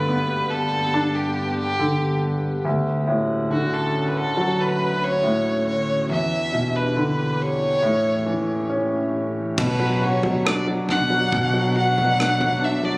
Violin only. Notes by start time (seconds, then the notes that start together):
Already playing: B4
0.50 A4
1.15 G4
1.59 G4
3.52 F#4
3.74 A4
4.10 B4
4.17 A4
4.61 B4
5.04 C#5
5.68 C#5
6.12 E5
6.76 B4
7.42 C#5
9.60 B4
10.04 C#5
10.47 D5
10.91 F#5
11.77 F#5
12.64 E5
12.85 D5